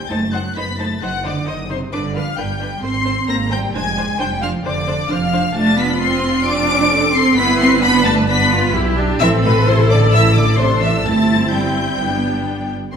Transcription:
Already playing: G5 G6
0.10 F#1 A3 D#4 C5 A5 A6
0.33 F#3 D#4 C5 F#5 F#6
0.55 F#1 B3 D#4 C5 B5 B6
0.79 A3 D#4 C5 A5 A6
1.02 F#1 F#3 D#4 C5 F#5 F#6
1.24 D3 D#4 C5 D5 D6
1.47 F#1 D#3 D#4 C5 D#5 D#6
1.70 C3 D#4 C5 C6
1.92 G1 D3 D4 B4 D5 D6
2.16 F3 D4 B4 F5 F6
2.37 G1 G3 D4 B4 G5 G6
2.60 D4 B4
2.83 G#1 C4 C5 C6 C7
3.05 C4 C5
3.28 G#1 A#3 C4 C5 A#5 A#6
3.51 G3 C4 C5 G5 G6
3.74 F1 G#3 D4 C5 G#5 G#6
3.97 D4 C5
4.19 F1 G3 D4 C5 G5 G6
4.42 F3 D4 C5 F5 F6
4.64 F1 D3 D4 C5 D5 D6
4.87 D4 C5
5.09 F1 F3 D4 C5 F5 F6
5.33 D4 C5
5.55 F1 A3 D4 F4 A5 A6
5.78 B3 B5 B6
6.00 C4 C6 C7
6.45 D4 D6 D7
6.92 A4
7.14 C4 C6 C7
7.36 G1 B3 E4 B4 B5 B6
7.59 C4 C6 C7
7.82 B3 D4 B5 B6
8.04 A3 A5 A6
8.28 B3 D4 B4 B5 B6
8.52 F4
8.75 B1 E4 G4
8.98 D4
9.20 A1 E3 C4 A4 E5 E6
9.44 B2 B4 B5
9.66 C3 E4 C5 C6
9.90 D3 D5 D6
10.12 E3 E4 E5 E6
10.35 D3 D5 D6
10.58 C3 D4 A4 C5 C6
10.82 E3 E5 E6
11.06 G1 A3 C4 E4 A5 A6
11.53 G3 G5 G6
12.00 G1 B3 D4
12.92 C6

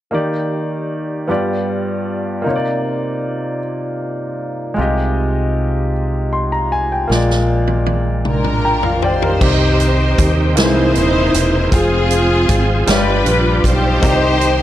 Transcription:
0.11 D#3 A#3 D#4 G4 D5
1.28 G2 B3 F4 G4 D5
2.42 C3 A#3 D#4
2.46 C3 A#3 D#4 F4 C#5
2.56 D5
4.74 G#3 F4 G4
4.78 C2 C3 G4 D#5
6.33 C6
6.52 A#5
6.72 G#5
6.92 G5
7.07 A#1 A#2 G#3 A#3 F4 D5, snare
7.12 G#3 D5
7.30 snare
7.67 high tom
7.86 high tom
8.25 D4 F4 A#4, mid tom
8.44 mid tom
8.65 G5 A#5
8.83 F5, floor tom
9.02 D#4 G4 C5 D5 G5, floor tom
9.22 A#4, floor tom
9.40 C2 C3 D#3 G3 C4 D#4 G4 D5, kick, crash
9.50 D#5
9.80 closed hi-hat
10.18 D#2, kick, closed hi-hat
10.55 C2 C3 E3 A#3 C4 D#4 E4 G#4 B4 C5, snare, closed hi-hat
10.65 C5
10.95 D#1, closed hi-hat
11.34 E1, closed hi-hat
11.71 F1 F3 G#3 C4 F4 G4 G#4 F5, kick, closed hi-hat
11.79 G#4
12.10 closed hi-hat
12.49 G#1, kick, closed hi-hat
12.86 G1 G2 F3 G3 D4 F4 G4 B4 C#5 D5, snare, closed hi-hat
12.96 D5
13.26 A#1, closed hi-hat
13.64 B1 D#4 G4 C5, kick, closed hi-hat
14.00 C2 C3 D#3 G3 C4 D#4 G4, kick, closed hi-hat
14.05 G4 D5
14.14 D#5
14.41 closed hi-hat

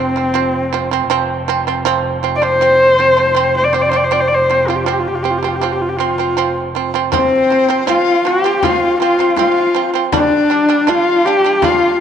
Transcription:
Already playing: F1 F3 C4
0.16 F3 C4
0.34 F3 C4
0.73 F3 C4
0.91 F3 C4
1.10 F1 F3 C4
1.48 F3 C4
1.67 F3 C4
1.85 F3 C4
2.23 F3 C4
2.36 D5
2.42 F3 C4 C5
2.61 F3 C4
2.99 F3 C4
3.17 F3 C4
3.35 F3 C4
3.57 C5
3.65 D5
3.73 F3 C4 C5
3.82 D5
3.89 F3 C4 C5
3.96 D5
4.04 C5
4.11 F3 C4 D5
4.20 C5
4.28 D5
4.35 C5
4.50 F3 C4
4.68 F3 C4 F4
4.76 G4
4.85 F3 C4 F4
4.93 G4
5.00 F4
5.07 G4
5.15 F4
5.23 F3 C4 G4
5.31 F4
5.38 G4
5.43 F3 C4
5.48 F4
5.56 G4
5.61 F3 C4 F4
5.73 G4
5.82 F4
5.89 G4
5.97 F3 C4 F4
6.18 F3 C4
6.37 F3 C4
6.75 F3 C4
6.94 F3 C4
7.12 F3 C4 C5, frame drum
7.50 F3 C4
7.69 F3 C4, frame drum
7.87 F3 C4 F4 F5, frame drum
8.25 F3 C4 G4 G5
8.44 F3 C4
8.58 G5
8.63 F3 C4 F4 F5, frame drum
9.00 F3 C4 F4 F5, frame drum
9.18 F3 C4, frame drum
9.37 F3 C4 F4 F5, frame drum
9.75 F3 C4
9.94 F3 C4
10.12 G3 D4 D5, frame drum
10.50 G3 D4
10.69 G3 D4 D5, frame drum
10.87 G3 D4 F4 F5, frame drum
11.26 G3 D4 G4
11.44 G3 D4
11.62 G3 D4 F4 F5, frame drum

